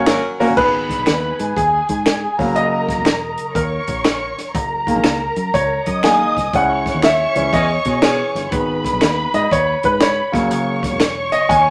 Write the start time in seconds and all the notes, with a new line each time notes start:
Already playing: A#3 C#4 F#4 C#5 C#6
0.06 G#1 F#3 C#4 A#4, finger snap, snare, closed hi-hat
0.40 F#1 A#3 C#4 F#4 A#4, snare, open hi-hat
0.49 G1
0.57 G#1 D#3 G#3 B3 B4 B5, kick, crash
0.89 kick, snare, closed hi-hat
0.99 B1
1.06 D#2, finger snap, snare, closed hi-hat
1.39 G#2 G#4 G#5, closed hi-hat
1.57 D#2 G#4, kick, closed hi-hat
1.89 G#2, kick, closed hi-hat
2.06 finger snap, snare, closed hi-hat
2.38 F#1 C#3 F#3 A#3 A#4 A#5, kick, snare, open hi-hat
2.56 F#1 D#5, closed hi-hat
2.89 kick, snare, closed hi-hat
2.98 E1
3.05 finger snap, snare, closed hi-hat
3.38 F#1, closed hi-hat
3.55 D#2 A#4 C#5 C#6, kick, closed hi-hat
3.88 A#1, kick, closed hi-hat
4.04 finger snap, snare, closed hi-hat
4.37 F1, snare, closed hi-hat
4.54 F#1 A#4 A#5, kick, closed hi-hat
4.87 D#3 G#3 A#3, kick, closed hi-hat
4.96 A#1
5.04 C#2, finger snap, snare, closed hi-hat
5.36 F#2, closed hi-hat
5.54 C#2 C#5, kick, closed hi-hat
5.86 F#2 D#5 D#6, kick, closed hi-hat
6.03 D#3 G#3 A#3 G#5, finger snap, snare, closed hi-hat
6.37 C2, kick, snare, closed hi-hat
6.53 C#2 G#3 C#4 E4 C#5 F#5 C#6, kick, closed hi-hat
6.86 kick, snare, closed hi-hat
6.94 D#2
7.02 E5, finger snap, snare, closed hi-hat
7.35 C#2 E3 G#3 C#4, closed hi-hat
7.53 E2 E3 C#4 G#4 D#5, kick, closed hi-hat
7.85 B2 E3 C#4 G#4, kick, closed hi-hat
8.02 E3 C#4 G#4 C#5, finger snap, snare, closed hi-hat
8.35 G1, snare, closed hi-hat
8.51 G#1 D#3 G#3 B3 B4 B5, kick, closed hi-hat
8.85 kick, snare, closed hi-hat
8.93 B1
9.01 D#2, finger snap, snare, closed hi-hat
9.34 G#2 D#5, closed hi-hat
9.51 D#2 C#5, kick, closed hi-hat
9.83 G#2 B4 B5, kick, closed hi-hat
10.00 C#5, finger snap, snare, closed hi-hat
10.32 F#1 C#3 F#3 A#3 C#5 C#6, kick, snare, closed hi-hat
10.50 F#1, closed hi-hat
10.83 kick, snare, closed hi-hat
10.91 E1
11.00 finger snap, snare, closed hi-hat
11.32 F#1 D#5, closed hi-hat
11.49 D#2 G#5, kick, closed hi-hat